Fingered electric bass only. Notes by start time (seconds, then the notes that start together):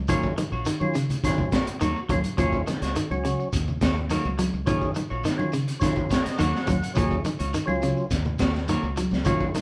0.09 D#3
0.52 A#1
0.81 D#3
1.23 D#3
1.67 muted fingered electric bass stroke
1.81 D#2
2.09 D#2
2.38 D#2
2.82 C#2
3.10 C#2
3.53 D#2
3.81 D#2
4.25 C#2
4.54 C#2
4.67 D#3
5.11 A#1
5.40 D#3
5.82 D#3
6.26 muted fingered electric bass stroke
6.40 D#2
6.68 D#2
6.97 D#2
7.40 C#2
7.68 C#2
8.11 D#2
8.40 D#2
8.83 C#2
9.13 C#2
9.26 D#3